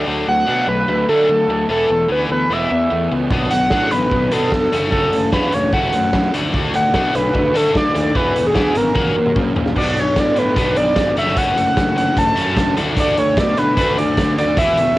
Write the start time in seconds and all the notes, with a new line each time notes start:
Already playing: A3
0.07 D2 D3 F#3 A3 D4
0.27 D2 F#3 A3 F#5
0.46 B2 D3 F#3 A3 D4
0.67 B1 F#3 A3 B4
0.88 D2 F#3 A3
1.08 D3 F#3 A3 D4 A4
1.29 D3 F#3 A3
1.48 D2 F#3 A3
1.69 E1 E3 B3 E4 A4
1.89 E1 E3 A3 B3
2.09 D2 E3 B3 E4 B4
2.29 D2 E3 A3 B3 B4
2.50 E1 E3 B3 E4 E5
2.71 E2 E3 B3
2.90 E2 E3 A3 B3
3.12 C#2 E3 B3
3.30 B1 B2 F#3 B3 D4, kick
3.50 B1 F#3 B3 F#5, closed hi-hat
3.70 A2 B2 F#3 B3 D4, kick, snare
3.91 A1 F#3 B3 B4, closed hi-hat
4.11 B1 F#3 B3, kick
4.31 B2 F#3 B3 D4 A4, closed hi-hat
4.52 F1 F#3 B3, kick, snare
4.72 F#1 F#2 A3 C#4 F#4, closed hi-hat
4.91 F#1 F#2 A3 C#4 F#4 A4, kick
5.12 F#1 C#3 A3 C#4, closed hi-hat
5.32 E2 C#3 A3 C#4 F#4 B4, kick, snare
5.52 E1 F#3 A3 C#4 C#5, closed hi-hat
5.73 F#1 A3 C#4 F#4 F#5, kick
5.93 F#2 C#3 A3 C#4, closed hi-hat
6.13 F#2 F#3 A3 C#4, kick, snare
6.34 D2 D3 A3 D4 F#4, closed hi-hat
6.53 D2 D3 A3 D4 F#4, kick
6.74 D2 F#3 A3 D4 F#5, closed hi-hat
6.94 B2 D3 A3 D4 F#4, kick, snare
7.14 B1 F#3 A3 D4 B4, closed hi-hat
7.34 D2 A3 D4, kick
7.54 D3 A3 D4 F#4 A4, closed hi-hat
7.75 D3 F#3 A3 D4 D5, kick, snare
7.87 D5
7.95 D#2 A3 D4, closed hi-hat
8.15 E1 E3 B3 E4 B4, kick
8.35 E1 E3 A3 B3, closed hi-hat
8.47 G#4
8.55 D2 E3 B3 E4, kick, snare
8.75 G#1 E3 A3 B3 A#4, closed hi-hat
8.95 F#1 F#3 A#3 C#4 F#4, kick, high tom
9.05 high tom
9.15 F#2 F#3 A#3 C#4
9.26 mid tom
9.36 F#2 A#3 C#4, kick, mid tom
9.56 A#1 A#3 C#4, floor tom
9.66 snare
9.76 B1 B2 B3 D4 F#4 D5, kick, crash
9.96 F#3 B3 D4 C#5, closed hi-hat
10.16 A2 B3 D4 D5, kick, snare, closed hi-hat
10.36 F#3 B3 D4 B4, closed hi-hat
10.56 B1 B3 D4 F#4 B4, kick, closed hi-hat
10.76 B3 D4 F#4 D5, closed hi-hat
10.96 G#1 B3 D4, kick, snare, closed hi-hat
11.16 F#1 F#3 A3 C#4 F#4 E5, closed hi-hat
11.27 snare
11.37 F#1 F#3 A3 C#4 F#4 F#5, kick, closed hi-hat
11.56 F#1 A3 C#4, closed hi-hat
11.77 F#1 A3 C#4, kick, snare, closed hi-hat
11.96 F#3 A3 C#4 F#5, closed hi-hat
12.17 F#1 A3 C#4 A5, kick, closed hi-hat
12.36 F#2 A3 C#4 F#4, closed hi-hat
12.56 F#1 A3 C#4, kick, snare, closed hi-hat
12.77 D2 D3 A3 D4 F#4, closed hi-hat
12.97 D2 D3 A3 D4 F#4 D5, kick, closed hi-hat
13.17 A3 D4 C#5, closed hi-hat
13.37 B2 A3 D4 D5, kick, snare, closed hi-hat
13.57 D3 A3 D4 B4, closed hi-hat
13.77 D2 A3 D4 F#4 B4, kick, closed hi-hat
13.97 A3 D4 F#4 D5, closed hi-hat
14.17 D2 A3 D4, kick, snare, closed hi-hat
14.38 A3 D4 F#4 D5, closed hi-hat
14.57 E1 E3 B3 E4 E5, kick, closed hi-hat
14.77 E1 E3 A3 B3, closed hi-hat